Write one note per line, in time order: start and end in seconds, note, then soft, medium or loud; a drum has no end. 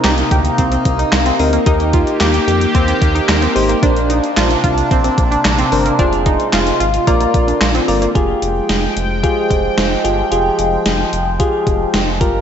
0.00 1.63 C3 medium
0.00 5.95 A#3 medium
0.00 0.34 C4 medium
0.00 0.34 D#4 medium
0.00 1.65 D#4 medium
0.00 0.34 A#4 loud
0.04 0.23 C2 loud
0.04 0.24 G4 medium
0.04 snare loud
0.04 clap medium
0.04 closed hi-hat medium
0.18 closed hi-hat medium
0.31 0.50 D2 medium
0.31 0.51 G4 medium
0.31 kick medium
0.31 closed hi-hat medium
0.45 closed hi-hat medium
0.58 0.77 C2 loud
0.58 0.68 C4 medium
0.58 kick medium
0.58 closed hi-hat medium
0.72 0.92 C4 medium
0.72 closed hi-hat medium
0.85 1.04 C2 loud
0.85 kick medium
0.85 closed hi-hat medium
0.99 1.19 D#4 medium
0.99 closed hi-hat medium
1.12 1.31 C2 loud
1.12 snare loud
1.12 clap loud
1.12 closed hi-hat medium
1.26 1.46 C4 medium
1.26 closed hi-hat medium
1.39 1.58 D2 medium
1.39 1.61 C4 medium
1.39 1.61 D#4 medium
1.39 1.61 A#4 medium
1.39 open hi-hat medium
1.53 1.63 A#3 medium
1.53 closed hi-hat medium
1.66 2.04 D#2 loud
1.66 3.81 D#3 medium
1.66 2.51 D#4 medium
1.66 1.86 D#4 loud
1.66 2.51 G4 medium
1.66 3.81 G4 medium
1.66 2.51 A#4 medium
1.66 kick loud
1.66 closed hi-hat medium
1.80 closed hi-hat medium
1.93 2.13 F4 medium
1.93 kick loud
1.93 closed hi-hat medium
2.07 closed hi-hat soft
2.20 2.40 D#2 loud
2.20 2.40 G4 medium
2.20 snare loud
2.20 clap medium
2.20 closed hi-hat medium
2.34 closed hi-hat medium
2.48 2.67 F2 loud
2.48 2.67 G4 medium
2.48 closed hi-hat medium
2.61 closed hi-hat medium
2.75 2.94 D#2 loud
2.75 2.84 C4 medium
2.75 kick medium
2.75 closed hi-hat medium
2.88 3.08 C4 medium
2.88 closed hi-hat medium
3.02 3.21 D#2 loud
3.02 kick medium
3.02 closed hi-hat medium
3.15 3.35 D#4 medium
3.15 closed hi-hat soft
3.29 3.48 D#2 loud
3.29 snare loud
3.29 clap loud
3.29 closed hi-hat medium
3.42 3.62 C4 medium
3.42 closed hi-hat medium
3.56 3.75 G#1 loud
3.56 3.77 D#4 medium
3.56 3.77 G4 medium
3.56 3.77 C5 loud
3.56 open hi-hat medium
3.69 3.79 A#3 medium
3.69 closed hi-hat medium
3.83 4.21 A#1 loud
3.83 7.04 C3 medium
3.83 4.67 D4 medium
3.83 4.03 D4 loud
3.83 5.97 D4 medium
3.83 4.67 A#4 medium
3.83 4.67 C5 loud
3.83 kick loud
3.83 closed hi-hat medium
3.97 closed hi-hat medium
4.10 4.30 D#4 medium
4.10 closed hi-hat medium
4.24 closed hi-hat soft
4.37 4.56 A#1 loud
4.37 4.57 F4 medium
4.37 snare loud
4.37 clap medium
4.37 closed hi-hat medium
4.51 closed hi-hat medium
4.64 4.83 C2 loud
4.64 4.84 F4 medium
4.64 kick medium
4.64 closed hi-hat medium
4.78 closed hi-hat medium
4.91 5.10 A#1 loud
4.91 5.01 C4 medium
4.91 kick medium
4.91 closed hi-hat medium
5.04 5.24 C4 medium
5.04 closed hi-hat medium
5.18 5.37 A#1 loud
5.18 kick medium
5.18 closed hi-hat medium
5.31 5.51 D4 medium
5.31 closed hi-hat medium
5.45 5.64 A#1 loud
5.45 snare loud
5.45 clap loud
5.45 closed hi-hat medium
5.58 5.78 C4 medium
5.58 closed hi-hat medium
5.72 5.91 G1 medium
5.72 5.93 D4 medium
5.72 5.93 A#4 medium
5.72 5.93 C5 medium
5.72 open hi-hat medium
5.85 5.95 A#3 medium
5.85 closed hi-hat medium
5.99 6.37 F1 loud
5.99 6.19 D4 loud
5.99 6.83 F4 medium
5.99 8.13 F4 medium
5.99 6.83 G#4 medium
5.99 6.83 C5 loud
5.99 kick loud
5.99 closed hi-hat medium
6.13 closed hi-hat medium
6.26 6.46 D#4 medium
6.26 kick loud
6.26 closed hi-hat medium
6.40 closed hi-hat soft
6.53 6.72 F1 medium
6.53 6.73 F4 medium
6.53 snare loud
6.53 clap medium
6.53 closed hi-hat medium
6.67 closed hi-hat medium
6.80 6.99 G#1 medium
6.80 7.00 F4 medium
6.80 closed hi-hat medium
6.94 closed hi-hat medium
7.07 7.26 A#1 loud
7.07 7.17 A#3 medium
7.07 7.72 F4 medium
7.07 7.72 A#4 medium
7.07 7.72 D5 loud
7.07 kick medium
7.07 closed hi-hat medium
7.21 7.40 A#3 medium
7.21 closed hi-hat medium
7.34 7.53 A#1 medium
7.34 kick medium
7.34 closed hi-hat medium
7.48 7.67 D4 medium
7.48 closed hi-hat soft
7.61 7.80 A#1 loud
7.61 snare loud
7.61 clap medium
7.61 closed hi-hat medium
7.75 7.95 C4 medium
7.75 closed hi-hat medium
7.88 8.07 G1 loud
7.88 8.09 F4 medium
7.88 8.09 A#4 medium
7.88 8.09 D5 medium
7.88 open hi-hat medium
8.02 8.12 A#3 medium
8.02 closed hi-hat medium
8.15 8.34 F1 loud
8.15 12.41 F3 medium
8.15 12.41 G#3 medium
8.15 8.99 F4 medium
8.15 8.99 G4 medium
8.15 8.99 G#4 medium
8.15 12.41 G5 medium
8.15 kick loud
8.15 closed hi-hat medium
8.42 8.61 F1 medium
8.42 closed hi-hat medium
8.69 8.88 F1 loud
8.69 snare loud
8.69 closed hi-hat medium
8.96 9.25 F1 medium
8.96 closed hi-hat medium
9.23 9.86 F4 medium
9.23 9.86 G4 medium
9.23 9.86 G#4 medium
9.23 kick medium
9.23 closed hi-hat medium
9.51 9.69 F1 medium
9.51 kick medium
9.51 closed hi-hat medium
9.78 9.96 F1 medium
9.78 snare loud
9.78 closed hi-hat medium
10.04 10.23 G1 medium
10.04 10.25 F4 medium
10.04 10.25 G4 medium
10.04 10.25 G#4 medium
10.04 closed hi-hat medium
10.31 10.50 F1 loud
10.31 11.16 F4 medium
10.31 11.16 G4 medium
10.31 11.16 G#4 medium
10.31 closed hi-hat medium
10.59 10.78 F1 medium
10.59 closed hi-hat medium
10.86 11.05 F1 loud
10.86 snare loud
10.86 closed hi-hat medium
11.13 11.41 F1 medium
11.13 closed hi-hat medium
11.40 12.03 F4 medium
11.40 12.03 G4 medium
11.40 12.03 G#4 medium
11.40 kick medium
11.40 closed hi-hat medium
11.67 11.86 F1 loud
11.67 kick medium
11.67 closed hi-hat medium
11.94 12.22 F1 loud
11.94 snare loud
11.94 closed hi-hat medium
12.21 12.40 G1 medium
12.21 12.41 F4 medium
12.21 12.41 G4 medium
12.21 12.41 A#4 medium
12.21 kick medium
12.21 closed hi-hat medium